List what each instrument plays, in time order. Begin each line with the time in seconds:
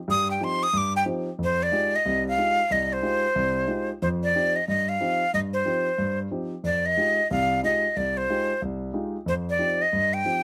0.08 grand piano G2 G3, flute D#6
0.31 flute G5
0.40 grand piano F3 C4 D#4 G4, flute C6
0.63 flute D#6
0.73 grand piano G2
0.77 flute D6
0.96 flute G5
1.05 grand piano F3 C4 D#4 G4
1.39 grand piano F2
1.44 flute C5
1.63 flute D5
1.72 grand piano G#3 D#4 F4 G4
1.96 flute D#5
2.05 grand piano C2 C3
2.28 flute F5
2.38 grand piano G#3 D#4 F4 G4
2.70 grand piano C2, flute D#5
2.93 flute C5
3.02 grand piano G#3 D#4 F4 G4
3.35 grand piano C2 C3
3.67 grand piano G#3 D#4 F4 G4
4.02 grand piano F2 F3, flute C5
4.23 flute D5
4.35 grand piano F3 C4 D#4 G4
4.56 flute D#5
4.68 grand piano G2, flute D#5
4.89 flute F5
5.00 grand piano F3 C4 D#4 G4
5.34 grand piano G2, flute D#5
5.53 flute C5
5.65 grand piano F3 C4 D#4 G4
5.98 grand piano G2
6.31 grand piano F3 C4 D#4 G4
6.63 grand piano F2, flute D5
6.86 flute D#5
6.97 grand piano G#3 D#4 F4 G4
7.31 grand piano C2 C3, flute F5
7.63 grand piano G#3 D#4 F4 G4, flute D#5
7.96 grand piano C2, flute D5
8.17 flute C5
8.29 grand piano G#3 D#4 F4 G4
8.62 grand piano C2
8.93 grand piano G#3 D#4 F4 G4
9.26 grand piano F2, flute C5
9.50 flute D5
9.58 grand piano F3 C4 D#4 G4
9.82 flute D#5
9.93 grand piano G2
10.14 flute G5
10.25 grand piano F3 C4 D#4 G4